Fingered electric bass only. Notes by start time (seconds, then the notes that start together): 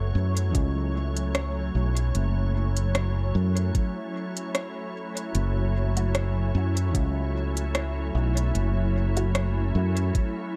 Already playing: F#1
0.15 F#2
0.55 C#2
1.75 B1
2.15 F#1
3.35 F#2
5.35 F#1
6.55 F#2
6.95 C#2
8.15 B1
8.55 F#1
9.75 F#2